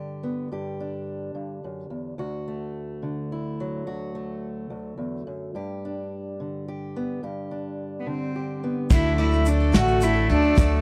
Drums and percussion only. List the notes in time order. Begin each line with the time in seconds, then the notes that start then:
8.90 kick, crash, shaker
9.18 ride
9.33 shaker
9.46 ride, shaker
9.74 snare, ride
9.88 shaker
10.01 ride, shaker
10.29 ride
10.57 kick, ride, shaker